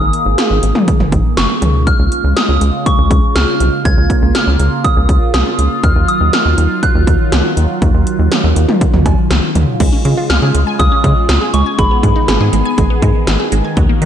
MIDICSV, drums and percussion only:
0, 0, Header, 1, 2, 480
1, 0, Start_track
1, 0, Key_signature, -5, "major"
1, 0, Tempo, 495868
1, 1808, Time_signature, 4, 2, 24, 8
1, 13604, End_track
2, 0, Start_track
2, 0, Title_t, "Drums"
2, 129, Note_on_c, 9, 42, 72
2, 226, Note_off_c, 9, 42, 0
2, 369, Note_on_c, 9, 42, 84
2, 370, Note_on_c, 9, 38, 108
2, 466, Note_off_c, 9, 38, 0
2, 466, Note_off_c, 9, 42, 0
2, 608, Note_on_c, 9, 42, 80
2, 705, Note_off_c, 9, 42, 0
2, 727, Note_on_c, 9, 47, 98
2, 824, Note_off_c, 9, 47, 0
2, 850, Note_on_c, 9, 36, 95
2, 850, Note_on_c, 9, 42, 76
2, 947, Note_off_c, 9, 36, 0
2, 947, Note_off_c, 9, 42, 0
2, 970, Note_on_c, 9, 45, 91
2, 1066, Note_off_c, 9, 45, 0
2, 1086, Note_on_c, 9, 36, 98
2, 1087, Note_on_c, 9, 42, 77
2, 1183, Note_off_c, 9, 36, 0
2, 1184, Note_off_c, 9, 42, 0
2, 1328, Note_on_c, 9, 38, 116
2, 1328, Note_on_c, 9, 42, 78
2, 1425, Note_off_c, 9, 38, 0
2, 1425, Note_off_c, 9, 42, 0
2, 1568, Note_on_c, 9, 45, 92
2, 1569, Note_on_c, 9, 42, 82
2, 1665, Note_off_c, 9, 42, 0
2, 1665, Note_off_c, 9, 45, 0
2, 1809, Note_on_c, 9, 36, 120
2, 1809, Note_on_c, 9, 42, 72
2, 1906, Note_off_c, 9, 36, 0
2, 1906, Note_off_c, 9, 42, 0
2, 2050, Note_on_c, 9, 42, 71
2, 2147, Note_off_c, 9, 42, 0
2, 2290, Note_on_c, 9, 42, 82
2, 2291, Note_on_c, 9, 38, 110
2, 2387, Note_off_c, 9, 38, 0
2, 2387, Note_off_c, 9, 42, 0
2, 2529, Note_on_c, 9, 42, 81
2, 2626, Note_off_c, 9, 42, 0
2, 2771, Note_on_c, 9, 36, 91
2, 2771, Note_on_c, 9, 42, 74
2, 2867, Note_off_c, 9, 36, 0
2, 2868, Note_off_c, 9, 42, 0
2, 3007, Note_on_c, 9, 36, 98
2, 3008, Note_on_c, 9, 42, 77
2, 3104, Note_off_c, 9, 36, 0
2, 3105, Note_off_c, 9, 42, 0
2, 3249, Note_on_c, 9, 38, 113
2, 3249, Note_on_c, 9, 42, 80
2, 3346, Note_off_c, 9, 38, 0
2, 3346, Note_off_c, 9, 42, 0
2, 3489, Note_on_c, 9, 42, 83
2, 3586, Note_off_c, 9, 42, 0
2, 3729, Note_on_c, 9, 36, 125
2, 3729, Note_on_c, 9, 42, 74
2, 3826, Note_off_c, 9, 36, 0
2, 3826, Note_off_c, 9, 42, 0
2, 3968, Note_on_c, 9, 36, 96
2, 3970, Note_on_c, 9, 42, 73
2, 4064, Note_off_c, 9, 36, 0
2, 4067, Note_off_c, 9, 42, 0
2, 4210, Note_on_c, 9, 38, 105
2, 4210, Note_on_c, 9, 42, 83
2, 4306, Note_off_c, 9, 42, 0
2, 4307, Note_off_c, 9, 38, 0
2, 4448, Note_on_c, 9, 42, 85
2, 4545, Note_off_c, 9, 42, 0
2, 4690, Note_on_c, 9, 36, 96
2, 4690, Note_on_c, 9, 42, 77
2, 4787, Note_off_c, 9, 36, 0
2, 4787, Note_off_c, 9, 42, 0
2, 4927, Note_on_c, 9, 36, 94
2, 4928, Note_on_c, 9, 42, 81
2, 5023, Note_off_c, 9, 36, 0
2, 5024, Note_off_c, 9, 42, 0
2, 5168, Note_on_c, 9, 38, 120
2, 5168, Note_on_c, 9, 42, 80
2, 5265, Note_off_c, 9, 38, 0
2, 5265, Note_off_c, 9, 42, 0
2, 5408, Note_on_c, 9, 42, 81
2, 5505, Note_off_c, 9, 42, 0
2, 5648, Note_on_c, 9, 36, 124
2, 5648, Note_on_c, 9, 42, 76
2, 5745, Note_off_c, 9, 36, 0
2, 5745, Note_off_c, 9, 42, 0
2, 5890, Note_on_c, 9, 42, 74
2, 5987, Note_off_c, 9, 42, 0
2, 6130, Note_on_c, 9, 38, 108
2, 6130, Note_on_c, 9, 42, 84
2, 6226, Note_off_c, 9, 42, 0
2, 6227, Note_off_c, 9, 38, 0
2, 6369, Note_on_c, 9, 42, 84
2, 6465, Note_off_c, 9, 42, 0
2, 6610, Note_on_c, 9, 36, 94
2, 6610, Note_on_c, 9, 42, 77
2, 6707, Note_off_c, 9, 36, 0
2, 6707, Note_off_c, 9, 42, 0
2, 6847, Note_on_c, 9, 36, 97
2, 6848, Note_on_c, 9, 42, 80
2, 6943, Note_off_c, 9, 36, 0
2, 6945, Note_off_c, 9, 42, 0
2, 7088, Note_on_c, 9, 38, 116
2, 7088, Note_on_c, 9, 42, 81
2, 7185, Note_off_c, 9, 38, 0
2, 7185, Note_off_c, 9, 42, 0
2, 7329, Note_on_c, 9, 42, 84
2, 7425, Note_off_c, 9, 42, 0
2, 7568, Note_on_c, 9, 42, 72
2, 7569, Note_on_c, 9, 36, 126
2, 7665, Note_off_c, 9, 36, 0
2, 7665, Note_off_c, 9, 42, 0
2, 7810, Note_on_c, 9, 42, 77
2, 7907, Note_off_c, 9, 42, 0
2, 8050, Note_on_c, 9, 38, 109
2, 8050, Note_on_c, 9, 42, 84
2, 8146, Note_off_c, 9, 42, 0
2, 8147, Note_off_c, 9, 38, 0
2, 8289, Note_on_c, 9, 42, 83
2, 8386, Note_off_c, 9, 42, 0
2, 8408, Note_on_c, 9, 47, 98
2, 8504, Note_off_c, 9, 47, 0
2, 8530, Note_on_c, 9, 36, 95
2, 8530, Note_on_c, 9, 42, 76
2, 8627, Note_off_c, 9, 36, 0
2, 8627, Note_off_c, 9, 42, 0
2, 8650, Note_on_c, 9, 45, 88
2, 8747, Note_off_c, 9, 45, 0
2, 8767, Note_on_c, 9, 36, 102
2, 8767, Note_on_c, 9, 56, 70
2, 8768, Note_on_c, 9, 42, 80
2, 8863, Note_off_c, 9, 36, 0
2, 8864, Note_off_c, 9, 42, 0
2, 8864, Note_off_c, 9, 56, 0
2, 9008, Note_on_c, 9, 38, 117
2, 9008, Note_on_c, 9, 42, 82
2, 9105, Note_off_c, 9, 38, 0
2, 9105, Note_off_c, 9, 42, 0
2, 9248, Note_on_c, 9, 42, 82
2, 9248, Note_on_c, 9, 45, 92
2, 9345, Note_off_c, 9, 42, 0
2, 9345, Note_off_c, 9, 45, 0
2, 9488, Note_on_c, 9, 42, 76
2, 9488, Note_on_c, 9, 49, 105
2, 9489, Note_on_c, 9, 36, 124
2, 9585, Note_off_c, 9, 42, 0
2, 9585, Note_off_c, 9, 49, 0
2, 9586, Note_off_c, 9, 36, 0
2, 9729, Note_on_c, 9, 42, 75
2, 9826, Note_off_c, 9, 42, 0
2, 9969, Note_on_c, 9, 42, 83
2, 9970, Note_on_c, 9, 38, 113
2, 10066, Note_off_c, 9, 38, 0
2, 10066, Note_off_c, 9, 42, 0
2, 10209, Note_on_c, 9, 42, 83
2, 10306, Note_off_c, 9, 42, 0
2, 10450, Note_on_c, 9, 42, 73
2, 10451, Note_on_c, 9, 36, 92
2, 10547, Note_off_c, 9, 36, 0
2, 10547, Note_off_c, 9, 42, 0
2, 10687, Note_on_c, 9, 36, 101
2, 10688, Note_on_c, 9, 42, 78
2, 10784, Note_off_c, 9, 36, 0
2, 10785, Note_off_c, 9, 42, 0
2, 10928, Note_on_c, 9, 38, 120
2, 10929, Note_on_c, 9, 42, 79
2, 11025, Note_off_c, 9, 38, 0
2, 11025, Note_off_c, 9, 42, 0
2, 11168, Note_on_c, 9, 42, 82
2, 11265, Note_off_c, 9, 42, 0
2, 11409, Note_on_c, 9, 36, 127
2, 11409, Note_on_c, 9, 42, 75
2, 11505, Note_off_c, 9, 42, 0
2, 11506, Note_off_c, 9, 36, 0
2, 11648, Note_on_c, 9, 36, 100
2, 11650, Note_on_c, 9, 42, 76
2, 11744, Note_off_c, 9, 36, 0
2, 11746, Note_off_c, 9, 42, 0
2, 11890, Note_on_c, 9, 38, 109
2, 11890, Note_on_c, 9, 42, 83
2, 11987, Note_off_c, 9, 38, 0
2, 11987, Note_off_c, 9, 42, 0
2, 12129, Note_on_c, 9, 42, 86
2, 12226, Note_off_c, 9, 42, 0
2, 12370, Note_on_c, 9, 36, 96
2, 12370, Note_on_c, 9, 42, 76
2, 12467, Note_off_c, 9, 36, 0
2, 12467, Note_off_c, 9, 42, 0
2, 12607, Note_on_c, 9, 36, 101
2, 12607, Note_on_c, 9, 42, 81
2, 12704, Note_off_c, 9, 36, 0
2, 12704, Note_off_c, 9, 42, 0
2, 12848, Note_on_c, 9, 38, 117
2, 12848, Note_on_c, 9, 42, 82
2, 12945, Note_off_c, 9, 38, 0
2, 12945, Note_off_c, 9, 42, 0
2, 13088, Note_on_c, 9, 42, 82
2, 13185, Note_off_c, 9, 42, 0
2, 13328, Note_on_c, 9, 36, 125
2, 13328, Note_on_c, 9, 42, 77
2, 13425, Note_off_c, 9, 36, 0
2, 13425, Note_off_c, 9, 42, 0
2, 13569, Note_on_c, 9, 42, 72
2, 13604, Note_off_c, 9, 42, 0
2, 13604, End_track
0, 0, End_of_file